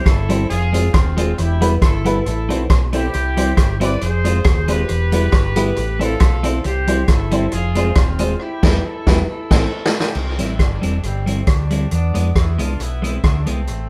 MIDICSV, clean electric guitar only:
0, 0, Header, 1, 2, 480
1, 0, Start_track
1, 0, Key_signature, 0, "major"
1, 0, Tempo, 439239
1, 1505, Time_signature, 4, 2, 24, 8
1, 15181, End_track
2, 0, Start_track
2, 0, Title_t, "Clean electric guitar"
2, 0, Program_c, 0, 27
2, 318, Note_on_c, 0, 55, 83
2, 331, Note_on_c, 0, 60, 83
2, 340, Note_on_c, 0, 64, 84
2, 467, Note_off_c, 0, 55, 0
2, 474, Note_off_c, 0, 60, 0
2, 478, Note_off_c, 0, 64, 0
2, 794, Note_on_c, 0, 56, 83
2, 804, Note_on_c, 0, 60, 86
2, 815, Note_on_c, 0, 65, 95
2, 945, Note_off_c, 0, 56, 0
2, 950, Note_off_c, 0, 60, 0
2, 956, Note_off_c, 0, 65, 0
2, 1278, Note_on_c, 0, 56, 79
2, 1290, Note_on_c, 0, 60, 80
2, 1299, Note_on_c, 0, 65, 97
2, 1427, Note_off_c, 0, 56, 0
2, 1434, Note_off_c, 0, 60, 0
2, 1438, Note_off_c, 0, 65, 0
2, 1758, Note_on_c, 0, 55, 74
2, 1772, Note_on_c, 0, 59, 82
2, 1781, Note_on_c, 0, 64, 79
2, 1907, Note_off_c, 0, 55, 0
2, 1914, Note_off_c, 0, 59, 0
2, 1919, Note_off_c, 0, 64, 0
2, 2238, Note_on_c, 0, 55, 85
2, 2249, Note_on_c, 0, 59, 87
2, 2258, Note_on_c, 0, 64, 92
2, 2388, Note_off_c, 0, 55, 0
2, 2393, Note_off_c, 0, 59, 0
2, 2397, Note_off_c, 0, 64, 0
2, 2719, Note_on_c, 0, 57, 83
2, 2733, Note_on_c, 0, 60, 82
2, 2741, Note_on_c, 0, 64, 95
2, 2868, Note_off_c, 0, 57, 0
2, 2875, Note_off_c, 0, 60, 0
2, 2879, Note_off_c, 0, 64, 0
2, 3199, Note_on_c, 0, 57, 70
2, 3211, Note_on_c, 0, 60, 74
2, 3220, Note_on_c, 0, 64, 84
2, 3348, Note_off_c, 0, 57, 0
2, 3353, Note_off_c, 0, 60, 0
2, 3358, Note_off_c, 0, 64, 0
2, 3682, Note_on_c, 0, 55, 82
2, 3693, Note_on_c, 0, 60, 85
2, 3701, Note_on_c, 0, 64, 83
2, 3829, Note_off_c, 0, 55, 0
2, 3834, Note_off_c, 0, 60, 0
2, 3838, Note_off_c, 0, 64, 0
2, 4155, Note_on_c, 0, 55, 80
2, 4166, Note_on_c, 0, 60, 101
2, 4176, Note_on_c, 0, 64, 104
2, 4305, Note_off_c, 0, 55, 0
2, 4311, Note_off_c, 0, 60, 0
2, 4316, Note_off_c, 0, 64, 0
2, 4638, Note_on_c, 0, 56, 77
2, 4648, Note_on_c, 0, 60, 82
2, 4659, Note_on_c, 0, 65, 90
2, 4786, Note_off_c, 0, 56, 0
2, 4792, Note_off_c, 0, 60, 0
2, 4797, Note_off_c, 0, 65, 0
2, 5113, Note_on_c, 0, 56, 74
2, 5121, Note_on_c, 0, 60, 74
2, 5132, Note_on_c, 0, 65, 83
2, 5263, Note_off_c, 0, 56, 0
2, 5268, Note_off_c, 0, 60, 0
2, 5273, Note_off_c, 0, 65, 0
2, 5595, Note_on_c, 0, 55, 71
2, 5606, Note_on_c, 0, 59, 80
2, 5617, Note_on_c, 0, 64, 86
2, 5744, Note_off_c, 0, 55, 0
2, 5750, Note_off_c, 0, 59, 0
2, 5755, Note_off_c, 0, 64, 0
2, 6076, Note_on_c, 0, 55, 84
2, 6085, Note_on_c, 0, 59, 86
2, 6095, Note_on_c, 0, 64, 104
2, 6224, Note_off_c, 0, 55, 0
2, 6229, Note_off_c, 0, 59, 0
2, 6234, Note_off_c, 0, 64, 0
2, 6550, Note_on_c, 0, 57, 84
2, 6562, Note_on_c, 0, 60, 89
2, 6575, Note_on_c, 0, 64, 101
2, 6701, Note_off_c, 0, 57, 0
2, 6707, Note_off_c, 0, 60, 0
2, 6713, Note_off_c, 0, 64, 0
2, 7030, Note_on_c, 0, 57, 79
2, 7044, Note_on_c, 0, 60, 95
2, 7052, Note_on_c, 0, 64, 86
2, 7180, Note_off_c, 0, 57, 0
2, 7188, Note_off_c, 0, 60, 0
2, 7191, Note_off_c, 0, 64, 0
2, 7511, Note_on_c, 0, 55, 74
2, 7523, Note_on_c, 0, 60, 80
2, 7531, Note_on_c, 0, 64, 80
2, 7660, Note_off_c, 0, 55, 0
2, 7666, Note_off_c, 0, 60, 0
2, 7670, Note_off_c, 0, 64, 0
2, 7992, Note_on_c, 0, 55, 90
2, 8006, Note_on_c, 0, 60, 92
2, 8015, Note_on_c, 0, 64, 91
2, 8141, Note_off_c, 0, 55, 0
2, 8147, Note_off_c, 0, 60, 0
2, 8152, Note_off_c, 0, 64, 0
2, 8473, Note_on_c, 0, 56, 79
2, 8483, Note_on_c, 0, 60, 87
2, 8491, Note_on_c, 0, 65, 97
2, 8621, Note_off_c, 0, 56, 0
2, 8626, Note_off_c, 0, 60, 0
2, 8630, Note_off_c, 0, 65, 0
2, 8954, Note_on_c, 0, 56, 90
2, 8963, Note_on_c, 0, 60, 81
2, 8975, Note_on_c, 0, 65, 96
2, 9101, Note_off_c, 0, 56, 0
2, 9105, Note_off_c, 0, 60, 0
2, 9111, Note_off_c, 0, 65, 0
2, 9430, Note_on_c, 0, 55, 84
2, 9440, Note_on_c, 0, 59, 91
2, 9449, Note_on_c, 0, 64, 93
2, 9582, Note_off_c, 0, 55, 0
2, 9588, Note_off_c, 0, 59, 0
2, 9593, Note_off_c, 0, 64, 0
2, 9912, Note_on_c, 0, 55, 101
2, 9920, Note_on_c, 0, 59, 97
2, 9933, Note_on_c, 0, 64, 102
2, 10063, Note_off_c, 0, 55, 0
2, 10068, Note_off_c, 0, 59, 0
2, 10075, Note_off_c, 0, 64, 0
2, 10388, Note_on_c, 0, 57, 98
2, 10399, Note_on_c, 0, 60, 97
2, 10411, Note_on_c, 0, 64, 101
2, 10541, Note_off_c, 0, 57, 0
2, 10547, Note_off_c, 0, 60, 0
2, 10554, Note_off_c, 0, 64, 0
2, 11348, Note_on_c, 0, 55, 64
2, 11359, Note_on_c, 0, 60, 65
2, 11369, Note_on_c, 0, 64, 70
2, 11497, Note_off_c, 0, 55, 0
2, 11503, Note_off_c, 0, 60, 0
2, 11508, Note_off_c, 0, 64, 0
2, 11821, Note_on_c, 0, 55, 73
2, 11833, Note_on_c, 0, 60, 75
2, 11842, Note_on_c, 0, 64, 78
2, 11974, Note_off_c, 0, 55, 0
2, 11980, Note_off_c, 0, 60, 0
2, 11985, Note_off_c, 0, 64, 0
2, 12308, Note_on_c, 0, 55, 70
2, 12321, Note_on_c, 0, 60, 75
2, 12328, Note_on_c, 0, 64, 88
2, 12458, Note_off_c, 0, 55, 0
2, 12465, Note_off_c, 0, 60, 0
2, 12468, Note_off_c, 0, 64, 0
2, 12793, Note_on_c, 0, 55, 72
2, 12805, Note_on_c, 0, 60, 78
2, 12813, Note_on_c, 0, 64, 77
2, 12941, Note_off_c, 0, 55, 0
2, 12947, Note_off_c, 0, 60, 0
2, 12951, Note_off_c, 0, 64, 0
2, 13269, Note_on_c, 0, 56, 77
2, 13280, Note_on_c, 0, 59, 70
2, 13291, Note_on_c, 0, 64, 70
2, 13420, Note_off_c, 0, 56, 0
2, 13425, Note_off_c, 0, 59, 0
2, 13431, Note_off_c, 0, 64, 0
2, 13753, Note_on_c, 0, 56, 82
2, 13762, Note_on_c, 0, 59, 77
2, 13773, Note_on_c, 0, 64, 80
2, 13902, Note_off_c, 0, 56, 0
2, 13907, Note_off_c, 0, 59, 0
2, 13913, Note_off_c, 0, 64, 0
2, 14230, Note_on_c, 0, 56, 81
2, 14243, Note_on_c, 0, 59, 78
2, 14249, Note_on_c, 0, 64, 84
2, 14382, Note_off_c, 0, 56, 0
2, 14388, Note_off_c, 0, 59, 0
2, 14391, Note_off_c, 0, 64, 0
2, 14712, Note_on_c, 0, 56, 63
2, 14721, Note_on_c, 0, 59, 72
2, 14733, Note_on_c, 0, 64, 74
2, 14863, Note_off_c, 0, 56, 0
2, 14868, Note_off_c, 0, 59, 0
2, 14874, Note_off_c, 0, 64, 0
2, 15181, End_track
0, 0, End_of_file